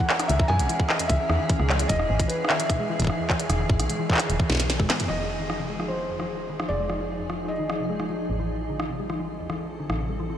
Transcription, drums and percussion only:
0.09 clap
0.20 cross-stick, closed hi-hat
0.29 closed hi-hat
0.40 kick
0.50 cross-stick
0.60 closed hi-hat
0.69 closed hi-hat
0.80 kick
0.89 cross-stick, clap
0.99 closed hi-hat
1.10 kick, closed hi-hat
1.30 cross-stick
1.50 kick, closed hi-hat
1.60 cross-stick
1.69 clap
1.79 closed hi-hat
1.89 kick, closed hi-hat
2.00 cross-stick
2.20 kick, closed hi-hat
2.30 closed hi-hat
2.45 cross-stick
2.50 clap
2.60 closed hi-hat
2.70 kick, cross-stick, closed hi-hat
3.00 kick, closed hi-hat
3.02 kick
3.04 kick
3.07 kick, cross-stick
3.30 kick, clap
3.40 closed hi-hat
3.50 cross-stick, closed hi-hat
3.70 kick
3.80 cross-stick, closed hi-hat
3.90 closed hi-hat
4.10 kick, clap
4.15 clap
4.17 cross-stick, clap, closed hi-hat
4.30 closed hi-hat
4.40 kick
4.50 snare
4.52 snare
4.55 snare
4.57 snare
4.60 snare, closed hi-hat
4.70 snare, closed hi-hat
4.80 kick, mid tom
4.90 snare, clap
5.00 closed hi-hat, mid tom
5.10 cross-stick
5.50 cross-stick
5.80 cross-stick
6.20 cross-stick
6.60 cross-stick
6.90 cross-stick
7.30 cross-stick
7.70 cross-stick
8.00 cross-stick
8.80 cross-stick
9.10 cross-stick
9.50 cross-stick
9.90 cross-stick

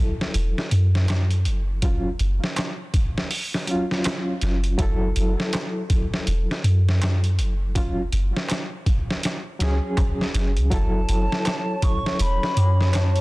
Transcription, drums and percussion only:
0.21 snare
0.34 closed hi-hat
0.58 snare
0.71 closed hi-hat
0.95 snare
1.08 snare, closed hi-hat, darbuka tek
1.31 closed hi-hat
1.45 closed hi-hat
1.82 kick, closed hi-hat
2.19 closed hi-hat
2.44 snare
2.56 snare, closed hi-hat, darbuka tek
2.94 kick, closed hi-hat
3.18 snare
3.31 open hi-hat
3.54 snare
3.67 closed hi-hat
3.91 snare
4.04 snare, closed hi-hat, darbuka tek
4.41 snare, closed hi-hat
4.64 closed hi-hat
4.79 kick, closed hi-hat
5.16 closed hi-hat
5.40 snare
5.53 snare, closed hi-hat, darbuka tek
5.90 kick, closed hi-hat
6.14 snare
6.27 closed hi-hat
6.51 snare
6.64 closed hi-hat
6.89 snare
7.02 snare, closed hi-hat, darbuka tek
7.24 closed hi-hat
7.39 closed hi-hat
7.75 kick, closed hi-hat
8.12 closed hi-hat
8.37 snare
8.49 snare, closed hi-hat, darbuka tek
8.86 kick, closed hi-hat
9.10 snare
9.23 snare, closed hi-hat
9.60 snare, closed hi-hat
9.97 kick, closed hi-hat, darbuka tek
10.21 snare
10.34 snare, closed hi-hat
10.57 closed hi-hat
10.71 kick, closed hi-hat
11.09 closed hi-hat
11.32 snare
11.45 snare, closed hi-hat, darbuka tek
11.82 kick, closed hi-hat
12.06 snare
12.19 closed hi-hat
12.43 snare
12.57 closed hi-hat
12.81 snare
12.93 snare, closed hi-hat, darbuka tek
13.16 closed hi-hat

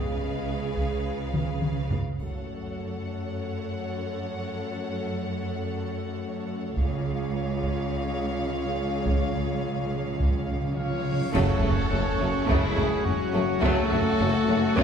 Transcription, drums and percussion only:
0.77 taiko
1.34 taiko mid
1.62 taiko mid
1.90 taiko low
2.19 taiko, triangle
6.77 taiko
7.63 taiko
9.06 taiko
10.20 taiko
11.34 concert bass drum, taiko, crash
11.63 taiko low
12.49 taiko
12.77 taiko low
13.06 taiko low
13.63 taiko
13.92 taiko low
14.77 taiko

